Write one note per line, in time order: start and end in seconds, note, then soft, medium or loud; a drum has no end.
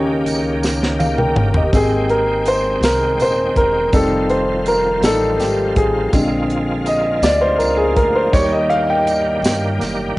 0.00 0.22 D#2 medium
0.00 1.69 C#3 medium
0.00 0.59 D#3 medium
0.00 1.71 D#3 medium
0.00 1.71 A#3 medium
0.00 0.42 C#4 medium
0.00 0.42 D#4 medium
0.00 0.43 G4 medium
0.00 1.71 G4 medium
0.00 0.43 A#4 medium
0.00 0.43 C#5 loud
0.26 1.32 C#2 medium
0.26 closed hi-hat medium
0.26 tambourine medium
0.63 snare medium
0.63 tambourine medium
0.83 snare medium
0.99 1.17 F5 medium
0.99 high tom medium
0.99 tambourine medium
1.18 1.53 A#4 medium
1.18 1.53 G5 medium
1.18 mid tom medium
1.36 1.70 G1 medium
1.36 mid tom loud
1.54 1.71 G4 soft
1.54 1.90 D#5 medium
1.54 floor tom loud
1.72 2.79 G#1 medium
1.72 6.09 D#3 medium
1.72 3.91 G#3 medium
1.72 2.79 A#3 soft
1.72 3.91 C4 soft
1.72 2.79 C4 medium
1.72 2.79 G4 soft
1.72 2.12 G#4 medium
1.72 3.91 G5 medium
1.72 kick loud
1.72 closed hi-hat medium
1.72 tambourine medium
2.09 2.48 A#4 medium
2.09 closed hi-hat soft
2.46 2.85 C5 medium
2.46 closed hi-hat medium
2.46 tambourine soft
2.81 3.16 C2 medium
2.81 3.22 A#4 medium
2.81 snare medium
2.81 closed hi-hat medium
2.81 tambourine medium
3.18 3.53 D#1 medium
3.18 3.55 C5 medium
3.18 closed hi-hat soft
3.18 tambourine soft
3.56 3.90 E1 medium
3.56 3.95 A#4 medium
3.56 kick medium
3.56 closed hi-hat medium
3.92 4.99 F1 medium
3.92 6.12 F3 medium
3.92 4.99 G3 medium
3.92 4.99 C4 soft
3.92 6.11 C4 medium
3.92 5.00 D#4 medium
3.92 8.30 F4 medium
3.92 4.31 A4 medium
3.92 kick loud
3.92 closed hi-hat medium
3.92 tambourine medium
4.29 4.68 C5 medium
4.29 closed hi-hat soft
4.66 5.05 A#4 medium
4.66 closed hi-hat medium
4.66 tambourine soft
5.02 5.36 A1 medium
5.02 5.37 G3 soft
5.02 5.37 A3 soft
5.02 5.37 D#4 medium
5.02 5.38 A4 medium
5.02 snare medium
5.02 closed hi-hat medium
5.02 tambourine medium
5.38 5.73 G#1 medium
5.38 5.78 G4 medium
5.38 snare soft
5.38 closed hi-hat soft
5.38 tambourine medium
5.76 6.10 A1 medium
5.76 6.46 G#4 medium
5.76 kick medium
5.76 closed hi-hat medium
6.13 7.19 A#1 medium
6.13 7.20 D3 soft
6.13 8.32 F3 medium
6.13 7.20 G#3 soft
6.13 8.32 G#3 medium
6.13 8.32 A#3 medium
6.13 7.20 C4 soft
6.13 kick loud
6.13 closed hi-hat medium
6.13 tambourine medium
6.50 closed hi-hat soft
6.86 7.25 D#5 medium
6.86 closed hi-hat medium
6.86 tambourine soft
7.22 7.57 D2 medium
7.22 7.42 D5 medium
7.22 snare medium
7.22 closed hi-hat medium
7.22 tambourine medium
7.41 7.61 C5 medium
7.58 7.94 C#2 medium
7.58 7.78 A#4 medium
7.58 closed hi-hat soft
7.58 tambourine medium
7.77 7.82 G#4 medium
7.96 8.31 D2 medium
7.96 8.14 A#4 medium
7.96 kick medium
7.96 closed hi-hat medium
8.15 8.33 C5 medium
8.32 9.40 D#2 medium
8.32 10.19 D#3 medium
8.32 8.82 G3 medium
8.32 10.19 G3 medium
8.32 10.19 A#3 medium
8.32 8.82 A#3 soft
8.32 8.82 D#4 medium
8.32 10.19 G4 medium
8.32 8.51 C#5 medium
8.32 kick loud
8.32 closed hi-hat medium
8.32 tambourine medium
8.52 8.71 D#5 medium
8.70 8.87 F5 medium
8.70 closed hi-hat soft
8.90 9.24 G5 medium
9.07 closed hi-hat medium
9.07 tambourine soft
9.42 9.77 G2 medium
9.42 snare medium
9.42 closed hi-hat medium
9.42 tambourine medium
9.79 10.14 F#1 medium
9.79 snare soft
9.79 closed hi-hat soft
9.79 tambourine soft